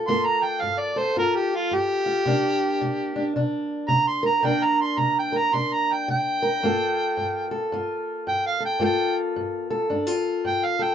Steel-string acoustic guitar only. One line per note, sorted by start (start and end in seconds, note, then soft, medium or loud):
0.08 0.57 G2 medium
0.08 2.26 A#3 medium
0.08 1.15 F4 medium
0.08 0.95 A4 medium
0.62 1.12 G2 medium
0.96 2.23 A4 medium
1.16 1.66 G2 medium
1.16 2.04 F4 medium
1.71 2.21 G2 medium
2.06 2.23 F4 medium
2.26 2.75 C3 medium
2.26 4.43 A#3 medium
2.26 3.15 D4 medium
2.81 3.31 C3 medium
3.16 3.36 D4 medium
3.36 3.85 C3 medium
3.36 4.44 D4 medium
3.88 4.39 C3 medium
4.23 4.45 A#4 medium
4.43 4.93 C3 medium
4.43 6.63 A#3 medium
4.43 5.54 D4 medium
4.43 5.32 A#4 medium
4.98 5.48 C3 medium
5.32 6.42 A#4 medium
5.54 6.04 C3 medium
5.54 6.64 D4 medium
6.08 6.58 C3 medium
6.42 6.65 A#4 medium
6.63 7.13 G2 medium
6.63 8.79 A#3 medium
6.63 7.73 F4 medium
6.63 7.51 A4 medium
7.17 7.68 G2 medium
7.51 8.59 A4 medium
7.72 8.22 G2 medium
7.72 8.79 F4 medium
8.27 8.77 G2 medium
8.60 8.79 A4 medium
8.79 9.31 G2 medium
8.79 10.95 A#3 medium
8.79 9.89 F4 medium
8.79 9.69 A4 medium
9.36 9.87 G2 medium
9.70 10.78 A4 medium
9.90 10.41 G2 medium
9.90 10.07 D4 medium
10.07 10.95 F4 medium
10.45 10.95 G2 medium
10.79 10.95 A4 medium